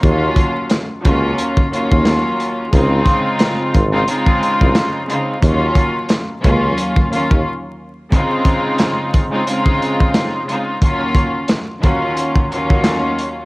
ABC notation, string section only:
X:1
M:4/4
L:1/16
Q:"Swing 16ths" 1/4=89
K:Db
V:1 name="String section"
[E,,G,B,DF]4- [E,,G,B,DF] z [E,,G,B,DF]4 [E,,G,B,DF]6 | [D,A,CEF]6 z [D,A,CEF] [D,A,CEF]6 [D,A,CEF]2 | [E,,G,B,DF]4- [E,,G,B,DF] z [E,,G,B,DF]4 [E,,G,B,DF]2 z4 | [D,A,CEF]6 z [D,A,CEF] [D,A,CEF]6 [D,A,CEF]2 |
[E,,G,B,DF]4- [E,,G,B,DF] z [E,,G,B,DF]4 [E,,G,B,DF]6 |]